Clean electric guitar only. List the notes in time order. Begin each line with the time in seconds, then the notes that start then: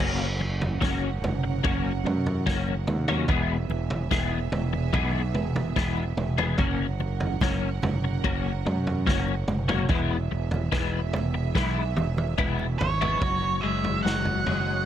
0.00 F#3 A#3 C#4 F#4
0.40 muted clean electric guitar stroke
0.81 F#3 A#3 C#4 F#4
1.44 muted clean electric guitar stroke
1.64 F#3 A#3 C#4 F#4
2.06 muted clean electric guitar stroke
2.46 F#3 A#3 C#4 F#4
3.08 F#3 A#3 C#4 F#4
3.28 E3 G#3 B3 G#4
3.71 muted clean electric guitar stroke
4.11 E3 G#3 B3 G#4
4.73 muted clean electric guitar stroke
4.93 E3 G#3 B3 G#4
5.35 muted clean electric guitar stroke
5.76 E3 G#3 B3 G#4
6.38 E3 G#3 B3 G#4
6.58 F#3 A#3 C#4 F#4
7.00 muted clean electric guitar stroke
7.42 F#3 A#3 C#4 F#4
8.04 muted clean electric guitar stroke
8.24 F#3 A#3 C#4 F#4
8.66 muted clean electric guitar stroke
9.07 F#3 A#3 C#4 F#4
9.68 F#3 A#3 C#4 F#4
9.89 E3 G#3 B3 E4
10.31 muted clean electric guitar stroke
10.72 E3 G#3 B3 E4
11.34 muted clean electric guitar stroke
11.55 E3 G#3 B3 E4
11.97 muted clean electric guitar stroke
12.38 E3 G#3 B3 E4
13.01 E3 G#3 B3 E4
13.22 F#3
13.63 G#3
14.05 F#3
14.46 G#3